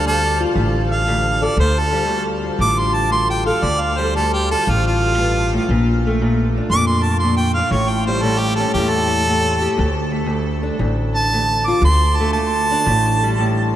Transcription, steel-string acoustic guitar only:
0, 0, Header, 1, 2, 480
1, 0, Start_track
1, 0, Key_signature, -1, "minor"
1, 0, Tempo, 512821
1, 1491, Time_signature, 4, 2, 24, 8
1, 12877, End_track
2, 0, Start_track
2, 0, Title_t, "Steel-string acoustic guitar"
2, 0, Program_c, 0, 25
2, 0, Note_on_c, 0, 50, 58
2, 0, Note_on_c, 0, 55, 55
2, 0, Note_on_c, 0, 62, 57
2, 51, Note_on_c, 0, 38, 71
2, 375, Note_off_c, 0, 62, 0
2, 379, Note_on_c, 0, 65, 58
2, 514, Note_off_c, 0, 38, 0
2, 517, Note_on_c, 0, 38, 73
2, 1005, Note_off_c, 0, 38, 0
2, 1009, Note_on_c, 0, 38, 78
2, 1329, Note_on_c, 0, 69, 71
2, 1483, Note_off_c, 0, 38, 0
2, 1486, Note_off_c, 0, 50, 0
2, 1487, Note_on_c, 0, 38, 78
2, 1489, Note_off_c, 0, 55, 0
2, 1801, Note_on_c, 0, 55, 62
2, 1829, Note_off_c, 0, 65, 0
2, 1829, Note_off_c, 0, 69, 0
2, 1931, Note_off_c, 0, 38, 0
2, 1935, Note_on_c, 0, 38, 78
2, 2275, Note_on_c, 0, 65, 56
2, 2430, Note_off_c, 0, 38, 0
2, 2434, Note_on_c, 0, 38, 71
2, 2895, Note_off_c, 0, 38, 0
2, 2906, Note_on_c, 0, 38, 73
2, 3243, Note_on_c, 0, 69, 64
2, 3387, Note_off_c, 0, 38, 0
2, 3399, Note_on_c, 0, 38, 74
2, 3402, Note_off_c, 0, 55, 0
2, 3728, Note_on_c, 0, 55, 59
2, 3756, Note_off_c, 0, 65, 0
2, 3756, Note_off_c, 0, 69, 0
2, 3883, Note_off_c, 0, 38, 0
2, 3903, Note_on_c, 0, 38, 76
2, 4233, Note_on_c, 0, 65, 57
2, 4362, Note_off_c, 0, 38, 0
2, 4373, Note_on_c, 0, 38, 70
2, 4846, Note_off_c, 0, 38, 0
2, 4850, Note_on_c, 0, 43, 64
2, 5172, Note_off_c, 0, 43, 0
2, 5178, Note_on_c, 0, 45, 61
2, 5318, Note_off_c, 0, 65, 0
2, 5324, Note_off_c, 0, 55, 0
2, 5330, Note_off_c, 0, 45, 0
2, 5340, Note_on_c, 0, 46, 76
2, 5680, Note_on_c, 0, 57, 60
2, 5807, Note_off_c, 0, 46, 0
2, 5818, Note_on_c, 0, 46, 74
2, 6154, Note_on_c, 0, 62, 59
2, 6284, Note_off_c, 0, 46, 0
2, 6295, Note_on_c, 0, 46, 69
2, 6756, Note_off_c, 0, 46, 0
2, 6768, Note_on_c, 0, 46, 70
2, 7084, Note_on_c, 0, 65, 65
2, 7223, Note_off_c, 0, 65, 0
2, 7227, Note_off_c, 0, 46, 0
2, 7236, Note_on_c, 0, 45, 78
2, 7238, Note_off_c, 0, 62, 0
2, 7561, Note_off_c, 0, 57, 0
2, 7565, Note_on_c, 0, 55, 59
2, 7694, Note_off_c, 0, 45, 0
2, 7706, Note_on_c, 0, 45, 75
2, 8048, Note_on_c, 0, 61, 59
2, 8195, Note_off_c, 0, 45, 0
2, 8206, Note_on_c, 0, 45, 70
2, 8669, Note_off_c, 0, 45, 0
2, 8681, Note_on_c, 0, 45, 71
2, 9003, Note_on_c, 0, 67, 68
2, 9143, Note_off_c, 0, 67, 0
2, 9143, Note_on_c, 0, 38, 81
2, 9145, Note_off_c, 0, 61, 0
2, 9162, Note_off_c, 0, 45, 0
2, 9163, Note_off_c, 0, 55, 0
2, 9468, Note_on_c, 0, 57, 58
2, 9595, Note_off_c, 0, 38, 0
2, 9606, Note_on_c, 0, 38, 73
2, 9950, Note_on_c, 0, 62, 62
2, 10091, Note_off_c, 0, 38, 0
2, 10102, Note_on_c, 0, 38, 81
2, 10594, Note_off_c, 0, 38, 0
2, 10608, Note_on_c, 0, 38, 76
2, 10932, Note_on_c, 0, 65, 66
2, 11059, Note_off_c, 0, 62, 0
2, 11069, Note_off_c, 0, 65, 0
2, 11072, Note_off_c, 0, 38, 0
2, 11083, Note_on_c, 0, 38, 74
2, 11416, Note_off_c, 0, 57, 0
2, 11419, Note_on_c, 0, 57, 66
2, 11566, Note_off_c, 0, 38, 0
2, 11579, Note_on_c, 0, 38, 76
2, 11899, Note_on_c, 0, 62, 60
2, 12034, Note_off_c, 0, 62, 0
2, 12035, Note_off_c, 0, 57, 0
2, 12047, Note_on_c, 0, 45, 76
2, 12055, Note_off_c, 0, 38, 0
2, 12386, Note_on_c, 0, 55, 66
2, 12519, Note_off_c, 0, 45, 0
2, 12530, Note_on_c, 0, 45, 79
2, 12877, Note_off_c, 0, 45, 0
2, 12877, Note_off_c, 0, 55, 0
2, 12877, End_track
0, 0, End_of_file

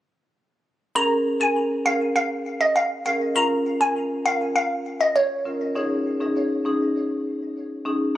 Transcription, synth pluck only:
0, 0, Header, 1, 2, 480
1, 0, Start_track
1, 0, Key_signature, -5, "minor"
1, 0, Tempo, 600000
1, 766, Time_signature, 4, 2, 24, 8
1, 6536, End_track
2, 0, Start_track
2, 0, Title_t, "Synth pluck"
2, 0, Program_c, 0, 84
2, 765, Note_on_c, 0, 82, 95
2, 853, Note_off_c, 0, 82, 0
2, 1126, Note_on_c, 0, 80, 70
2, 1214, Note_off_c, 0, 80, 0
2, 1485, Note_on_c, 0, 77, 83
2, 1573, Note_off_c, 0, 77, 0
2, 1725, Note_on_c, 0, 77, 77
2, 1813, Note_off_c, 0, 77, 0
2, 2085, Note_on_c, 0, 75, 71
2, 2173, Note_off_c, 0, 75, 0
2, 2205, Note_on_c, 0, 77, 79
2, 2293, Note_off_c, 0, 77, 0
2, 2446, Note_on_c, 0, 77, 76
2, 2534, Note_off_c, 0, 77, 0
2, 2686, Note_on_c, 0, 82, 104
2, 2773, Note_off_c, 0, 82, 0
2, 3046, Note_on_c, 0, 80, 73
2, 3134, Note_off_c, 0, 80, 0
2, 3405, Note_on_c, 0, 77, 80
2, 3493, Note_off_c, 0, 77, 0
2, 3645, Note_on_c, 0, 77, 79
2, 3733, Note_off_c, 0, 77, 0
2, 4005, Note_on_c, 0, 75, 78
2, 4093, Note_off_c, 0, 75, 0
2, 4125, Note_on_c, 0, 73, 86
2, 4464, Note_off_c, 0, 73, 0
2, 6536, End_track
0, 0, End_of_file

